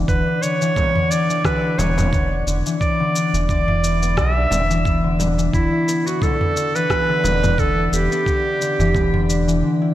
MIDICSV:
0, 0, Header, 1, 6, 480
1, 0, Start_track
1, 0, Tempo, 681818
1, 58, Time_signature, 4, 2, 24, 8
1, 6998, End_track
2, 0, Start_track
2, 0, Title_t, "Clarinet"
2, 0, Program_c, 0, 71
2, 58, Note_on_c, 0, 71, 90
2, 299, Note_on_c, 0, 73, 97
2, 310, Note_off_c, 0, 71, 0
2, 778, Note_on_c, 0, 74, 101
2, 789, Note_off_c, 0, 73, 0
2, 1021, Note_on_c, 0, 71, 98
2, 1031, Note_off_c, 0, 74, 0
2, 1259, Note_on_c, 0, 73, 85
2, 1270, Note_off_c, 0, 71, 0
2, 1738, Note_off_c, 0, 73, 0
2, 1976, Note_on_c, 0, 74, 93
2, 2429, Note_off_c, 0, 74, 0
2, 2462, Note_on_c, 0, 74, 89
2, 2912, Note_off_c, 0, 74, 0
2, 2944, Note_on_c, 0, 76, 105
2, 3633, Note_off_c, 0, 76, 0
2, 3899, Note_on_c, 0, 64, 95
2, 4274, Note_on_c, 0, 66, 90
2, 4285, Note_off_c, 0, 64, 0
2, 4382, Note_on_c, 0, 69, 107
2, 4393, Note_off_c, 0, 66, 0
2, 4755, Note_on_c, 0, 71, 117
2, 4765, Note_off_c, 0, 69, 0
2, 5348, Note_on_c, 0, 69, 104
2, 5358, Note_off_c, 0, 71, 0
2, 5536, Note_off_c, 0, 69, 0
2, 5536, Note_on_c, 0, 69, 67
2, 5588, Note_on_c, 0, 67, 105
2, 5599, Note_off_c, 0, 69, 0
2, 6783, Note_off_c, 0, 67, 0
2, 6998, End_track
3, 0, Start_track
3, 0, Title_t, "Harp"
3, 0, Program_c, 1, 46
3, 0, Note_on_c, 1, 52, 95
3, 0, Note_on_c, 1, 59, 93
3, 0, Note_on_c, 1, 62, 71
3, 0, Note_on_c, 1, 64, 89
3, 58, Note_on_c, 1, 50, 71
3, 93, Note_off_c, 1, 52, 0
3, 187, Note_off_c, 1, 62, 0
3, 190, Note_on_c, 1, 62, 68
3, 291, Note_off_c, 1, 50, 0
3, 299, Note_on_c, 1, 50, 72
3, 430, Note_on_c, 1, 52, 103
3, 535, Note_off_c, 1, 59, 0
3, 538, Note_on_c, 1, 59, 88
3, 664, Note_off_c, 1, 50, 0
3, 672, Note_on_c, 1, 50, 101
3, 693, Note_off_c, 1, 52, 0
3, 777, Note_off_c, 1, 62, 0
3, 780, Note_on_c, 1, 62, 70
3, 912, Note_on_c, 1, 52, 93
3, 1010, Note_off_c, 1, 50, 0
3, 1019, Note_on_c, 1, 50, 80
3, 1053, Note_off_c, 1, 52, 0
3, 1068, Note_off_c, 1, 64, 0
3, 1152, Note_on_c, 1, 64, 86
3, 1258, Note_off_c, 1, 59, 0
3, 1261, Note_on_c, 1, 59, 94
3, 1390, Note_off_c, 1, 59, 0
3, 1393, Note_on_c, 1, 59, 95
3, 1491, Note_off_c, 1, 50, 0
3, 1500, Note_on_c, 1, 50, 79
3, 1630, Note_off_c, 1, 62, 0
3, 1633, Note_on_c, 1, 62, 69
3, 1732, Note_off_c, 1, 50, 0
3, 1741, Note_on_c, 1, 50, 67
3, 1872, Note_on_c, 1, 52, 98
3, 1978, Note_off_c, 1, 59, 0
3, 1981, Note_on_c, 1, 59, 86
3, 2102, Note_off_c, 1, 50, 0
3, 2111, Note_on_c, 1, 50, 96
3, 2133, Note_off_c, 1, 52, 0
3, 2218, Note_off_c, 1, 62, 0
3, 2221, Note_on_c, 1, 62, 70
3, 2353, Note_on_c, 1, 52, 96
3, 2452, Note_off_c, 1, 50, 0
3, 2460, Note_on_c, 1, 50, 80
3, 2493, Note_off_c, 1, 52, 0
3, 2589, Note_off_c, 1, 64, 0
3, 2592, Note_on_c, 1, 64, 102
3, 2697, Note_off_c, 1, 59, 0
3, 2700, Note_on_c, 1, 59, 94
3, 2828, Note_off_c, 1, 59, 0
3, 2831, Note_on_c, 1, 59, 99
3, 2930, Note_off_c, 1, 50, 0
3, 2939, Note_on_c, 1, 50, 77
3, 3067, Note_off_c, 1, 62, 0
3, 3070, Note_on_c, 1, 62, 68
3, 3170, Note_off_c, 1, 50, 0
3, 3178, Note_on_c, 1, 50, 75
3, 3309, Note_on_c, 1, 52, 90
3, 3412, Note_off_c, 1, 59, 0
3, 3415, Note_on_c, 1, 59, 91
3, 3538, Note_off_c, 1, 50, 0
3, 3547, Note_on_c, 1, 50, 95
3, 3573, Note_off_c, 1, 52, 0
3, 3654, Note_off_c, 1, 62, 0
3, 3656, Note_on_c, 1, 62, 68
3, 3787, Note_on_c, 1, 52, 95
3, 3886, Note_off_c, 1, 50, 0
3, 3895, Note_on_c, 1, 50, 72
3, 3933, Note_off_c, 1, 52, 0
3, 4026, Note_off_c, 1, 64, 0
3, 4029, Note_on_c, 1, 64, 98
3, 4135, Note_off_c, 1, 59, 0
3, 4138, Note_on_c, 1, 59, 96
3, 4267, Note_off_c, 1, 59, 0
3, 4269, Note_on_c, 1, 59, 102
3, 4372, Note_off_c, 1, 50, 0
3, 4380, Note_on_c, 1, 50, 77
3, 4507, Note_off_c, 1, 62, 0
3, 4509, Note_on_c, 1, 62, 74
3, 4608, Note_off_c, 1, 50, 0
3, 4617, Note_on_c, 1, 50, 68
3, 4750, Note_on_c, 1, 52, 94
3, 4853, Note_off_c, 1, 59, 0
3, 4856, Note_on_c, 1, 59, 98
3, 4980, Note_off_c, 1, 50, 0
3, 4988, Note_on_c, 1, 50, 90
3, 5013, Note_off_c, 1, 52, 0
3, 5093, Note_off_c, 1, 62, 0
3, 5096, Note_on_c, 1, 62, 72
3, 5229, Note_on_c, 1, 52, 95
3, 5328, Note_off_c, 1, 50, 0
3, 5336, Note_on_c, 1, 50, 77
3, 5373, Note_off_c, 1, 52, 0
3, 5467, Note_off_c, 1, 64, 0
3, 5470, Note_on_c, 1, 64, 94
3, 5576, Note_off_c, 1, 59, 0
3, 5579, Note_on_c, 1, 59, 94
3, 5706, Note_off_c, 1, 59, 0
3, 5709, Note_on_c, 1, 59, 105
3, 5812, Note_off_c, 1, 50, 0
3, 5820, Note_on_c, 1, 50, 72
3, 5947, Note_off_c, 1, 62, 0
3, 5950, Note_on_c, 1, 62, 70
3, 6051, Note_off_c, 1, 50, 0
3, 6060, Note_on_c, 1, 50, 71
3, 6192, Note_on_c, 1, 52, 100
3, 6298, Note_off_c, 1, 59, 0
3, 6301, Note_on_c, 1, 59, 95
3, 6424, Note_off_c, 1, 50, 0
3, 6432, Note_on_c, 1, 50, 110
3, 6453, Note_off_c, 1, 52, 0
3, 6537, Note_off_c, 1, 62, 0
3, 6540, Note_on_c, 1, 62, 70
3, 6671, Note_on_c, 1, 52, 97
3, 6771, Note_off_c, 1, 50, 0
3, 6780, Note_on_c, 1, 50, 79
3, 6813, Note_off_c, 1, 52, 0
3, 6908, Note_off_c, 1, 64, 0
3, 6910, Note_on_c, 1, 64, 91
3, 6998, Note_off_c, 1, 50, 0
3, 6998, Note_off_c, 1, 59, 0
3, 6998, Note_off_c, 1, 62, 0
3, 6998, Note_off_c, 1, 64, 0
3, 6998, End_track
4, 0, Start_track
4, 0, Title_t, "Analog synth bass"
4, 0, Program_c, 2, 38
4, 57, Note_on_c, 2, 28, 93
4, 168, Note_off_c, 2, 28, 0
4, 1256, Note_on_c, 2, 28, 82
4, 1709, Note_off_c, 2, 28, 0
4, 1737, Note_on_c, 2, 28, 90
4, 1848, Note_off_c, 2, 28, 0
4, 2349, Note_on_c, 2, 28, 98
4, 2936, Note_on_c, 2, 35, 80
4, 2947, Note_off_c, 2, 28, 0
4, 3143, Note_off_c, 2, 35, 0
4, 3175, Note_on_c, 2, 28, 90
4, 3869, Note_off_c, 2, 28, 0
4, 3896, Note_on_c, 2, 28, 100
4, 4008, Note_off_c, 2, 28, 0
4, 5096, Note_on_c, 2, 28, 85
4, 5550, Note_off_c, 2, 28, 0
4, 5578, Note_on_c, 2, 28, 94
4, 5689, Note_off_c, 2, 28, 0
4, 6190, Note_on_c, 2, 28, 100
4, 6778, Note_off_c, 2, 28, 0
4, 6998, End_track
5, 0, Start_track
5, 0, Title_t, "Frame drum"
5, 541, Note_on_c, 9, 64, 84
5, 612, Note_off_c, 9, 64, 0
5, 1256, Note_on_c, 9, 64, 93
5, 1327, Note_off_c, 9, 64, 0
5, 1390, Note_on_c, 9, 64, 93
5, 1461, Note_off_c, 9, 64, 0
5, 3174, Note_on_c, 9, 64, 82
5, 3245, Note_off_c, 9, 64, 0
5, 3654, Note_on_c, 9, 64, 72
5, 3725, Note_off_c, 9, 64, 0
5, 4376, Note_on_c, 9, 64, 71
5, 4447, Note_off_c, 9, 64, 0
5, 5095, Note_on_c, 9, 64, 86
5, 5165, Note_off_c, 9, 64, 0
5, 5230, Note_on_c, 9, 64, 84
5, 5301, Note_off_c, 9, 64, 0
5, 6297, Note_on_c, 9, 64, 71
5, 6368, Note_off_c, 9, 64, 0
5, 6998, End_track
6, 0, Start_track
6, 0, Title_t, "Drums"
6, 58, Note_on_c, 9, 36, 96
6, 62, Note_on_c, 9, 82, 34
6, 128, Note_off_c, 9, 36, 0
6, 133, Note_off_c, 9, 82, 0
6, 303, Note_on_c, 9, 82, 75
6, 373, Note_off_c, 9, 82, 0
6, 435, Note_on_c, 9, 82, 46
6, 505, Note_off_c, 9, 82, 0
6, 538, Note_on_c, 9, 36, 95
6, 543, Note_on_c, 9, 82, 31
6, 608, Note_off_c, 9, 36, 0
6, 613, Note_off_c, 9, 82, 0
6, 673, Note_on_c, 9, 45, 56
6, 743, Note_off_c, 9, 45, 0
6, 784, Note_on_c, 9, 82, 77
6, 854, Note_off_c, 9, 82, 0
6, 916, Note_on_c, 9, 82, 40
6, 987, Note_off_c, 9, 82, 0
6, 1018, Note_on_c, 9, 36, 106
6, 1021, Note_on_c, 9, 37, 67
6, 1025, Note_on_c, 9, 82, 32
6, 1088, Note_off_c, 9, 36, 0
6, 1092, Note_off_c, 9, 37, 0
6, 1095, Note_off_c, 9, 82, 0
6, 1263, Note_on_c, 9, 82, 77
6, 1333, Note_off_c, 9, 82, 0
6, 1392, Note_on_c, 9, 45, 52
6, 1396, Note_on_c, 9, 82, 43
6, 1463, Note_off_c, 9, 45, 0
6, 1466, Note_off_c, 9, 82, 0
6, 1498, Note_on_c, 9, 36, 106
6, 1503, Note_on_c, 9, 82, 33
6, 1568, Note_off_c, 9, 36, 0
6, 1574, Note_off_c, 9, 82, 0
6, 1743, Note_on_c, 9, 82, 73
6, 1813, Note_off_c, 9, 82, 0
6, 1874, Note_on_c, 9, 82, 43
6, 1945, Note_off_c, 9, 82, 0
6, 1977, Note_on_c, 9, 36, 94
6, 1982, Note_on_c, 9, 82, 31
6, 2048, Note_off_c, 9, 36, 0
6, 2052, Note_off_c, 9, 82, 0
6, 2223, Note_on_c, 9, 82, 74
6, 2293, Note_off_c, 9, 82, 0
6, 2355, Note_on_c, 9, 82, 42
6, 2425, Note_off_c, 9, 82, 0
6, 2457, Note_on_c, 9, 36, 88
6, 2463, Note_on_c, 9, 82, 32
6, 2528, Note_off_c, 9, 36, 0
6, 2533, Note_off_c, 9, 82, 0
6, 2591, Note_on_c, 9, 45, 57
6, 2662, Note_off_c, 9, 45, 0
6, 2703, Note_on_c, 9, 82, 69
6, 2773, Note_off_c, 9, 82, 0
6, 2835, Note_on_c, 9, 82, 40
6, 2906, Note_off_c, 9, 82, 0
6, 2937, Note_on_c, 9, 36, 99
6, 2940, Note_on_c, 9, 37, 71
6, 2943, Note_on_c, 9, 82, 31
6, 3007, Note_off_c, 9, 36, 0
6, 3010, Note_off_c, 9, 37, 0
6, 3013, Note_off_c, 9, 82, 0
6, 3183, Note_on_c, 9, 82, 73
6, 3253, Note_off_c, 9, 82, 0
6, 3315, Note_on_c, 9, 82, 39
6, 3385, Note_off_c, 9, 82, 0
6, 3417, Note_on_c, 9, 36, 99
6, 3423, Note_on_c, 9, 82, 30
6, 3487, Note_off_c, 9, 36, 0
6, 3493, Note_off_c, 9, 82, 0
6, 3662, Note_on_c, 9, 82, 75
6, 3733, Note_off_c, 9, 82, 0
6, 3794, Note_on_c, 9, 82, 40
6, 3864, Note_off_c, 9, 82, 0
6, 3897, Note_on_c, 9, 36, 94
6, 3902, Note_on_c, 9, 82, 32
6, 3967, Note_off_c, 9, 36, 0
6, 3973, Note_off_c, 9, 82, 0
6, 4143, Note_on_c, 9, 82, 76
6, 4214, Note_off_c, 9, 82, 0
6, 4275, Note_on_c, 9, 82, 44
6, 4345, Note_off_c, 9, 82, 0
6, 4377, Note_on_c, 9, 36, 91
6, 4384, Note_on_c, 9, 82, 31
6, 4447, Note_off_c, 9, 36, 0
6, 4455, Note_off_c, 9, 82, 0
6, 4512, Note_on_c, 9, 45, 57
6, 4582, Note_off_c, 9, 45, 0
6, 4623, Note_on_c, 9, 82, 77
6, 4693, Note_off_c, 9, 82, 0
6, 4756, Note_on_c, 9, 82, 38
6, 4827, Note_off_c, 9, 82, 0
6, 4857, Note_on_c, 9, 36, 89
6, 4861, Note_on_c, 9, 37, 70
6, 4864, Note_on_c, 9, 82, 29
6, 4928, Note_off_c, 9, 36, 0
6, 4931, Note_off_c, 9, 37, 0
6, 4934, Note_off_c, 9, 82, 0
6, 5104, Note_on_c, 9, 82, 69
6, 5175, Note_off_c, 9, 82, 0
6, 5233, Note_on_c, 9, 45, 58
6, 5237, Note_on_c, 9, 82, 40
6, 5304, Note_off_c, 9, 45, 0
6, 5307, Note_off_c, 9, 82, 0
6, 5338, Note_on_c, 9, 36, 99
6, 5344, Note_on_c, 9, 82, 31
6, 5408, Note_off_c, 9, 36, 0
6, 5415, Note_off_c, 9, 82, 0
6, 5584, Note_on_c, 9, 82, 68
6, 5654, Note_off_c, 9, 82, 0
6, 5716, Note_on_c, 9, 82, 38
6, 5787, Note_off_c, 9, 82, 0
6, 5818, Note_on_c, 9, 36, 94
6, 5825, Note_on_c, 9, 82, 30
6, 5888, Note_off_c, 9, 36, 0
6, 5895, Note_off_c, 9, 82, 0
6, 6065, Note_on_c, 9, 82, 71
6, 6136, Note_off_c, 9, 82, 0
6, 6194, Note_on_c, 9, 45, 63
6, 6197, Note_on_c, 9, 82, 40
6, 6264, Note_off_c, 9, 45, 0
6, 6268, Note_off_c, 9, 82, 0
6, 6298, Note_on_c, 9, 36, 92
6, 6306, Note_on_c, 9, 82, 32
6, 6368, Note_off_c, 9, 36, 0
6, 6376, Note_off_c, 9, 82, 0
6, 6433, Note_on_c, 9, 45, 59
6, 6503, Note_off_c, 9, 45, 0
6, 6545, Note_on_c, 9, 82, 70
6, 6616, Note_off_c, 9, 82, 0
6, 6677, Note_on_c, 9, 82, 40
6, 6748, Note_off_c, 9, 82, 0
6, 6998, End_track
0, 0, End_of_file